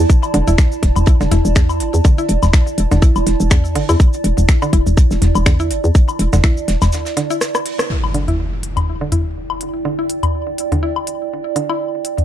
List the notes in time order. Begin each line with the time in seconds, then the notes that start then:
Already playing: E4 D5 A5
0.10 kick, closed hi-hat, shaker
0.23 closed hi-hat, low woodblock, shaker
0.34 E1 D3, closed hi-hat, open hi-hat
0.48 E1 E4, mid tom, open hi-hat, shaker
0.58 finger snap, kick, snare, closed hi-hat, shaker
0.72 shaker
0.83 E1, kick, snare, closed hi-hat, open hi-hat
0.96 E1, mid tom, open hi-hat, low woodblock, shaker
1.06 kick, closed hi-hat, shaker
1.21 E1 D3, snare, shaker
1.31 E1 E4, snare, closed hi-hat, mid tom, open hi-hat
1.45 E1, shaker
1.55 E2, finger snap, kick, snare, closed hi-hat, shaker
1.69 closed hi-hat, low woodblock, shaker
1.80 G1, closed hi-hat, open hi-hat
1.94 E2, shaker
2.04 D3, kick, closed hi-hat, shaker
2.18 E4, shaker
2.29 E1, closed hi-hat, open hi-hat
2.43 E1, snare, mid tom, open hi-hat, low woodblock, shaker
2.53 finger snap, kick, snare, closed hi-hat, shaker
2.67 shaker
2.78 E1, closed hi-hat, open hi-hat
2.91 E1 D3, snare, mid tom, open hi-hat, shaker
3.02 E4, kick, closed hi-hat, shaker
3.16 E1, closed hi-hat, low woodblock, shaker
3.26 E1, snare, closed hi-hat, open hi-hat
3.40 E1, shaker
3.50 E2, finger snap, kick, snare, closed hi-hat, shaker
3.65 shaker
3.75 G1 D3, open hi-hat
3.89 E2 E4, low woodblock, shaker
4.00 kick, closed hi-hat, shaker
4.13 closed hi-hat, shaker
4.24 E1, closed hi-hat, open hi-hat
4.38 E1, mid tom, open hi-hat, shaker
4.49 finger snap, kick, snare, closed hi-hat, shaker
4.62 D3, low woodblock, shaker
4.73 E1 E4, kick, closed hi-hat, open hi-hat
4.87 E1, mid tom, open hi-hat, shaker
4.97 kick, closed hi-hat, shaker
5.11 E1, snare, shaker
5.22 E1, snare, closed hi-hat, mid tom, open hi-hat
5.35 E1, low woodblock, shaker
5.46 E2 D3, finger snap, kick, snare, closed hi-hat, shaker
5.59 E4, closed hi-hat, shaker
5.71 G1, closed hi-hat, open hi-hat
5.84 E2, shaker
5.95 kick, closed hi-hat, shaker
6.09 low woodblock, shaker
6.19 E1, closed hi-hat, open hi-hat
6.33 E1 D3, snare, mid tom, open hi-hat, shaker
6.44 E4, finger snap, kick, snare, closed hi-hat, shaker
6.57 shaker
6.68 E1, snare, closed hi-hat, open hi-hat
6.82 E1, snare, closed hi-hat, mid tom, open hi-hat, low woodblock, shaker
6.92 snare, closed hi-hat, shaker
7.06 snare, closed hi-hat, shaker
7.17 D3, snare, closed hi-hat, open hi-hat
7.30 E4, shaker
7.41 cross-stick, snare, closed hi-hat, shaker
7.55 cross-stick, low woodblock, shaker
7.66 open hi-hat
7.79 cross-stick, shaker
7.90 E4, impact
8.04 low woodblock
8.14 D3 D5, open hi-hat
8.28 E4, mid tom, open hi-hat
8.55 G5
8.63 open hi-hat
8.77 mid tom, open hi-hat, low woodblock
9.01 D3
9.12 E4, mid tom, open hi-hat
9.50 low woodblock
9.61 open hi-hat
9.85 D3
9.99 E4
10.10 open hi-hat
10.23 mid tom, open hi-hat, low woodblock
10.58 open hi-hat
10.72 D3, mid tom, open hi-hat
10.83 E4
10.96 low woodblock
11.07 open hi-hat
11.56 D3, open hi-hat
11.69 E4, low woodblock
12.05 open hi-hat
12.18 mid tom, open hi-hat